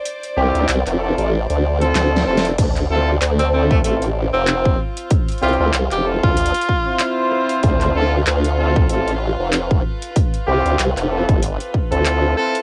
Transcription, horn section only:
X:1
M:4/4
L:1/16
Q:"Swing 16ths" 1/4=95
K:Ddor
V:1 name="Horn section"
z2 [CEFG]2 z2 [CEFA]2 z3 [CEFA]3 [CEFA] z | z2 [CEFA] z3 [CEFA]2 [CEFA] z6 z | z2 [CEFG]2 z2 [CEFA]2 z3 [CEFc]4- [CEFc]- | [CEFc]2 [CEFA] z3 [CEFA]2 [CEFA] z6 z |
z2 [CEFG]2 z2 [CEFA]2 z3 [CEFA]3 [CEFA] z |]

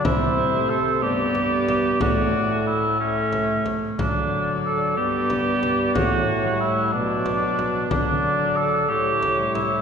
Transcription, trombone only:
X:1
M:6/8
L:1/8
Q:3/8=61
K:Amix
V:1 name="Trombone" clef=bass
=C,3 G,,3 | A,,4- A,, z | D,3 G,,3 | A,,3 B,,3 |
D,3 A,,3 |]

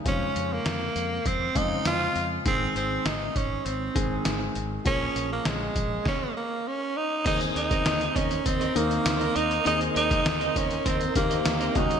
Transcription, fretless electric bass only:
X:1
M:4/4
L:1/8
Q:1/4=100
K:Ab
V:1 name="Fretless electric bass" clef=bass
F,, F,, F,, F,, F,, F,, F,, F,, | A,,, A,,, A,,, A,,, A,,, A,,, A,,, A,,, | B,,, B,,, B,,, B,,, z4 | E,, E,, E,, E,, E,, E,, E,, E,, |
E,, E,, E,, E,, E,, E,, E,, E,, |]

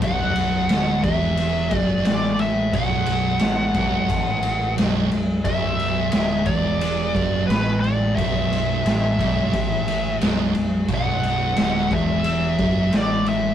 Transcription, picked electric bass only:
X:1
M:4/4
L:1/8
Q:1/4=88
K:Bm
V:1 name="Picked electric bass" clef=bass
B,,,,2 D,,, E,,,2 F,,, A,,,2 | B,,,,2 A,,, B,,,, A,,,2 B,,,, B,,,, | B,,,,2 D,,, E,,,2 F,,, A,,,2 | B,,,,2 A,,, z A,,,2 B,,,, B,,,, |
B,,,,2 D,,, E,,,2 F,,, A,,,2 |]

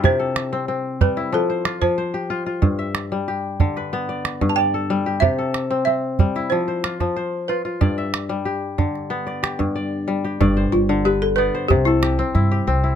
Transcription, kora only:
X:1
M:4/4
L:1/16
Q:1/4=92
K:Gmix
V:1 name="Kora"
G A3 C3 E2 c F2 c G2 F- | F e3 G3 B2 d3 d A2 G | G A3 C3 E2 c F2 c3 F | d e3 G3 z2 d G2 d3 G |
d c3 B2 d c2 A G2 E G2 E |]
V:2 name="Kora" clef=bass
C,2 z C2 z G,2 F,2 z F,2 z F2 | G,,2 z G,2 z D,2 B,2 z G,,2 z G,2 | C,2 z C2 z G,2 F,2 z F,2 z F2 | G,,2 z G,2 z D,2 B,2 z G,,2 z G,2 |
G,,2 z D,2 z B,2 C,2 z C2 z C2 |]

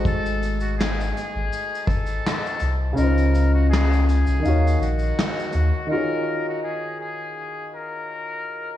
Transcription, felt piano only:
X:1
M:4/4
L:1/8
Q:"Swing 16ths" 1/4=82
K:Ebdor
V:1 name="Felt piano"
[A,=A,EGc]6- [_A,=A,EGc] z | [D,DEFc]4 [E,EGdf]4 | [E,EFGAd]8 |]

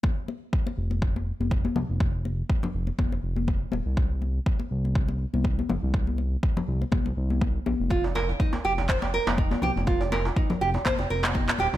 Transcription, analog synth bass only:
X:1
M:4/4
L:1/16
Q:"Swing 16ths" 1/4=122
K:Cphr
V:1 name="Analog synth bass" clef=bass
z6 F,,,4 z F,,,2 z C,, F,,,- | F,,,3 z3 F,,, z F,,, F,,, F,,,3 z E,,, C,,- | C,,3 z3 C,,4 z C,,2 z G,,, C,,- | C,,3 z3 C,, z C,, C,, C,,3 z B,,, F,,,- |
F,,,3 z3 F,,,4 z F,,,2 z C,, F,,,- | F,,,3 z3 F,,, z F,,, F,,, F,,,3 z E,,, C,, |]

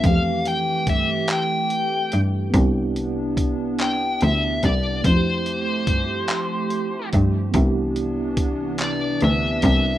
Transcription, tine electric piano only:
X:1
M:6/8
L:1/8
Q:3/8=48
K:C
V:1 name="Tine electric piano"
[E,A,CG]6 | [B,DEG]6 | [A,CE^FG]6 | [B,DEG]6 |]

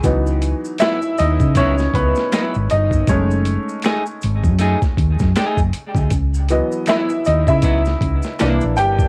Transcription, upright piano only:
X:1
M:4/4
L:1/16
Q:"Swing 16ths" 1/4=79
K:C#m
V:1 name="Upright piano"
z4 [Ee]2 [Dd]2 [Cc]2 [B,B]4 [Dd]2 | [Cc]12 z4 | z4 [Ee]2 [Dd] [Ee]6- [Ee] [=G=g]2 |]
V:2 name="Upright piano"
[E,F,B,D]2 z12 z2 | [G,A,D]16 | z2 [E,F,B,d]8- [E,F,B,d]2 [E,_B,=D]4 |]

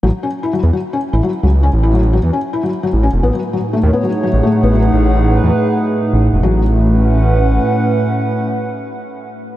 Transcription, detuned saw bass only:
X:1
M:4/4
L:1/16
Q:1/4=150
K:Alyd
V:1 name="Detuned saw bass" clef=bass
A,,, z4 z E,, z4 A,,, z2 C,,2- | C,, A,,,4- A,,, E,, z6 A,,,2 E,,, | A,,, z4 z D,, z4 A,,, z2 A,,,2- | A,,, A,,,4- A,,, E,, z6 A,,,2 E,,, |
A,,,12 z4 | z16 |]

